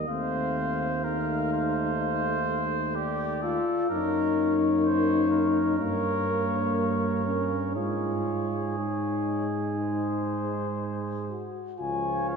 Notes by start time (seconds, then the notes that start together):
0.08 D#2 A3 C4 C5 F5
1.04 A3 D#4 A#4 F5
1.53 C5
2.95 G4 D5
3.43 F4 A4
3.90 F#2 A#3 D#4 A#4 C#5
4.84 C5
5.31 A#4
5.78 G2 A#3 C#5
6.76 A#4
7.25 C#4
7.76 G#2 G#3 F4 G#4 C#5
8.78 G#3 D#4 C#5
9.79 G#3 C5
11.30 F#4
11.79 C#2 F3 F4 C#5 G#5
12.29 F5